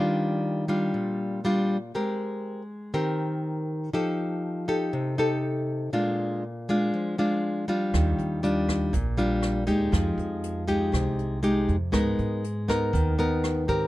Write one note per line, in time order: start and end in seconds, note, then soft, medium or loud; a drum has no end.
0.00 0.91 D#3 soft
0.00 0.64 G3 medium
0.00 0.64 D4 medium
0.00 0.65 F4 medium
0.68 1.39 G3 medium
0.68 1.40 D4 medium
0.68 1.40 F4 medium
0.94 1.91 A#2 medium
1.45 1.76 G3 medium
1.45 1.76 D4 medium
1.45 1.77 F4 medium
1.95 2.92 G#3 medium
1.95 2.61 C4 soft
1.95 2.61 G4 soft
1.95 2.62 A#4 soft
2.94 3.91 D#3 medium
2.94 3.89 C4 soft
2.94 3.90 G4 medium
2.94 3.90 A#4 medium
3.93 4.91 F3 medium
3.93 4.64 D#4 soft
3.93 4.65 G4 medium
3.93 4.65 A4 medium
4.68 5.14 D#4 medium
4.68 5.14 G4 medium
4.68 5.15 A4 medium
4.93 5.91 C3 medium
5.18 5.89 D#4 medium
5.18 5.90 G4 medium
5.18 5.90 A4 medium
5.93 6.91 A#2 medium
5.93 6.43 G#3 soft
5.93 6.43 D4 medium
5.93 6.43 F4 medium
6.69 7.15 G#3 medium
6.69 7.15 D4 medium
6.69 7.15 F4 medium
6.94 7.91 F3 medium
7.18 7.64 G#3 medium
7.18 7.64 D4 medium
7.18 7.65 F4 medium
7.68 8.42 G3 medium
7.68 8.42 D4 medium
7.68 8.43 F4 medium
7.94 8.17 D#2 medium
7.94 8.91 D#3 soft
7.94 kick medium
7.94 cross-stick medium
7.94 closed hi-hat soft
8.19 8.89 D#2 medium
8.19 closed hi-hat soft
8.43 8.93 G3 medium
8.43 8.93 D4 medium
8.43 8.93 F4 medium
8.43 closed hi-hat soft
8.69 kick soft
8.69 cross-stick medium
8.69 closed hi-hat soft
8.93 9.64 A#1 medium
8.93 9.91 A#2 medium
8.93 kick medium
8.93 closed hi-hat soft
9.17 9.64 G3 medium
9.17 9.64 D4 medium
9.17 9.64 F4 medium
9.17 closed hi-hat soft
9.42 cross-stick medium
9.42 closed hi-hat soft
9.67 9.92 D#2 medium
9.67 10.63 G#3 medium
9.67 10.64 D#4 medium
9.67 10.64 G4 medium
9.67 kick soft
9.67 closed hi-hat soft
9.92 10.16 F2 medium
9.92 10.90 F3 medium
9.92 kick medium
9.92 cross-stick medium
9.92 closed hi-hat soft
10.18 10.89 F2 medium
10.18 closed hi-hat soft
10.43 closed hi-hat soft
10.68 11.39 G#3 medium
10.68 11.39 D#4 medium
10.68 11.39 G4 medium
10.68 kick soft
10.68 closed hi-hat soft
10.92 11.64 C2 medium
10.92 11.90 C3 medium
10.92 kick medium
10.92 cross-stick medium
10.92 closed hi-hat soft
11.19 closed hi-hat soft
11.43 11.75 G#3 medium
11.43 11.76 D#4 medium
11.43 11.76 G4 medium
11.43 closed hi-hat soft
11.69 11.92 F2 medium
11.69 kick soft
11.69 closed hi-hat soft
11.92 12.17 G#2 loud
11.92 12.90 G#3 medium
11.92 12.42 B3 medium
11.92 12.43 D#4 medium
11.92 12.43 A#4 medium
11.92 kick medium
11.92 cross-stick medium
11.92 closed hi-hat soft
12.19 12.89 G#2 medium
12.19 closed hi-hat soft
12.44 closed hi-hat soft
12.68 13.14 B3 medium
12.68 13.15 D#4 medium
12.68 13.15 A#4 medium
12.68 kick soft
12.68 cross-stick medium
12.68 closed hi-hat soft
12.93 13.65 D#2 medium
12.93 13.87 D#3 medium
12.93 kick medium
12.93 closed hi-hat soft
13.19 13.64 B3 medium
13.19 13.65 D#4 medium
13.19 13.65 A#4 medium
13.19 closed hi-hat soft
13.44 cross-stick medium
13.44 closed hi-hat soft
13.68 13.87 G#2 medium
13.68 13.87 C4 medium
13.68 13.87 G4 medium
13.68 13.87 A#4 medium
13.68 kick soft
13.68 closed hi-hat soft